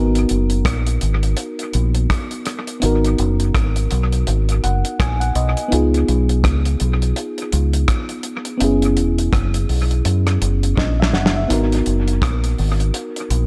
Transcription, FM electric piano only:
0, 0, Header, 1, 2, 480
1, 0, Start_track
1, 0, Key_signature, 5, "minor"
1, 0, Tempo, 722892
1, 1875, Time_signature, 4, 2, 24, 8
1, 8943, End_track
2, 0, Start_track
2, 0, Title_t, "FM electric piano"
2, 0, Program_c, 0, 5
2, 0, Note_on_c, 0, 59, 73
2, 0, Note_on_c, 0, 63, 64
2, 0, Note_on_c, 0, 66, 58
2, 0, Note_on_c, 0, 70, 71
2, 74, Control_c, 0, 64, 127
2, 1837, Note_off_c, 0, 59, 0
2, 1843, Note_off_c, 0, 63, 0
2, 1850, Note_off_c, 0, 66, 0
2, 1856, Note_off_c, 0, 70, 0
2, 1859, Note_on_c, 0, 59, 63
2, 1872, Note_on_c, 0, 63, 63
2, 1886, Note_on_c, 0, 66, 62
2, 1897, Note_on_c, 0, 70, 78
2, 3078, Note_on_c, 0, 78, 66
2, 3300, Note_off_c, 0, 78, 0
2, 3317, Note_on_c, 0, 80, 72
2, 3448, Note_off_c, 0, 80, 0
2, 3455, Note_on_c, 0, 78, 67
2, 3547, Note_off_c, 0, 78, 0
2, 3557, Note_on_c, 0, 75, 65
2, 3761, Note_off_c, 0, 59, 0
2, 3767, Note_off_c, 0, 63, 0
2, 3774, Note_off_c, 0, 66, 0
2, 3774, Note_on_c, 0, 59, 72
2, 3780, Note_off_c, 0, 70, 0
2, 3780, Note_off_c, 0, 75, 0
2, 3787, Note_on_c, 0, 63, 63
2, 3801, Note_on_c, 0, 65, 62
2, 3805, Control_c, 0, 64, 0
2, 3813, Note_on_c, 0, 68, 78
2, 3908, Control_c, 0, 64, 127
2, 5678, Note_off_c, 0, 59, 0
2, 5684, Note_off_c, 0, 63, 0
2, 5692, Note_off_c, 0, 65, 0
2, 5694, Note_on_c, 0, 59, 67
2, 5698, Note_off_c, 0, 68, 0
2, 5708, Note_on_c, 0, 61, 65
2, 5721, Note_on_c, 0, 64, 64
2, 5723, Control_c, 0, 64, 0
2, 5735, Note_on_c, 0, 68, 71
2, 5855, Control_c, 0, 64, 127
2, 7155, Note_on_c, 0, 75, 57
2, 7290, Note_off_c, 0, 75, 0
2, 7303, Note_on_c, 0, 76, 67
2, 7393, Note_off_c, 0, 76, 0
2, 7396, Note_on_c, 0, 78, 56
2, 7530, Note_off_c, 0, 78, 0
2, 7544, Note_on_c, 0, 76, 64
2, 7598, Note_off_c, 0, 59, 0
2, 7604, Note_off_c, 0, 61, 0
2, 7611, Note_off_c, 0, 64, 0
2, 7618, Note_off_c, 0, 68, 0
2, 7621, Note_on_c, 0, 59, 69
2, 7633, Note_on_c, 0, 63, 64
2, 7642, Control_c, 0, 64, 0
2, 7648, Note_on_c, 0, 66, 61
2, 7660, Note_on_c, 0, 70, 76
2, 7768, Note_off_c, 0, 76, 0
2, 7770, Control_c, 0, 64, 127
2, 8943, Note_off_c, 0, 59, 0
2, 8943, Note_off_c, 0, 63, 0
2, 8943, Note_off_c, 0, 66, 0
2, 8943, Note_off_c, 0, 70, 0
2, 8943, End_track
0, 0, End_of_file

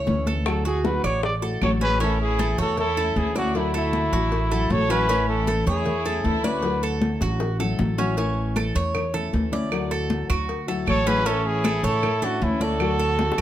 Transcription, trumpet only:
0, 0, Header, 1, 2, 480
1, 0, Start_track
1, 0, Key_signature, 3, "major"
1, 0, Tempo, 385852
1, 573, Time_signature, 4, 2, 24, 8
1, 16686, End_track
2, 0, Start_track
2, 0, Title_t, "Trumpet"
2, 0, Program_c, 0, 56
2, 589, Note_on_c, 0, 69, 79
2, 805, Note_off_c, 0, 69, 0
2, 820, Note_on_c, 0, 68, 84
2, 1065, Note_on_c, 0, 71, 82
2, 1083, Note_off_c, 0, 68, 0
2, 1287, Note_off_c, 0, 71, 0
2, 1294, Note_on_c, 0, 73, 95
2, 1517, Note_off_c, 0, 73, 0
2, 1543, Note_on_c, 0, 74, 85
2, 1684, Note_off_c, 0, 74, 0
2, 2034, Note_on_c, 0, 73, 88
2, 2137, Note_off_c, 0, 73, 0
2, 2271, Note_on_c, 0, 71, 107
2, 2486, Note_off_c, 0, 71, 0
2, 2512, Note_on_c, 0, 69, 88
2, 2726, Note_off_c, 0, 69, 0
2, 2750, Note_on_c, 0, 68, 97
2, 3188, Note_off_c, 0, 68, 0
2, 3239, Note_on_c, 0, 69, 94
2, 3450, Note_off_c, 0, 69, 0
2, 3473, Note_on_c, 0, 69, 98
2, 3946, Note_on_c, 0, 68, 88
2, 3965, Note_off_c, 0, 69, 0
2, 4179, Note_off_c, 0, 68, 0
2, 4195, Note_on_c, 0, 66, 98
2, 4434, Note_on_c, 0, 64, 90
2, 4453, Note_off_c, 0, 66, 0
2, 4663, Note_off_c, 0, 64, 0
2, 4681, Note_on_c, 0, 64, 91
2, 5864, Note_on_c, 0, 73, 105
2, 5883, Note_off_c, 0, 64, 0
2, 6107, Note_on_c, 0, 71, 113
2, 6125, Note_off_c, 0, 73, 0
2, 6573, Note_off_c, 0, 71, 0
2, 6580, Note_on_c, 0, 69, 88
2, 7023, Note_off_c, 0, 69, 0
2, 7060, Note_on_c, 0, 68, 91
2, 7776, Note_on_c, 0, 69, 82
2, 7795, Note_off_c, 0, 68, 0
2, 8017, Note_on_c, 0, 71, 90
2, 8036, Note_off_c, 0, 69, 0
2, 8495, Note_off_c, 0, 71, 0
2, 13542, Note_on_c, 0, 73, 113
2, 13779, Note_on_c, 0, 71, 108
2, 13797, Note_off_c, 0, 73, 0
2, 14014, Note_on_c, 0, 69, 96
2, 14033, Note_off_c, 0, 71, 0
2, 14260, Note_on_c, 0, 68, 96
2, 14279, Note_off_c, 0, 69, 0
2, 14743, Note_on_c, 0, 69, 102
2, 14762, Note_off_c, 0, 68, 0
2, 15227, Note_on_c, 0, 66, 90
2, 15245, Note_off_c, 0, 69, 0
2, 15466, Note_on_c, 0, 64, 85
2, 15485, Note_off_c, 0, 66, 0
2, 15704, Note_on_c, 0, 69, 104
2, 15722, Note_off_c, 0, 64, 0
2, 16686, Note_off_c, 0, 69, 0
2, 16686, End_track
0, 0, End_of_file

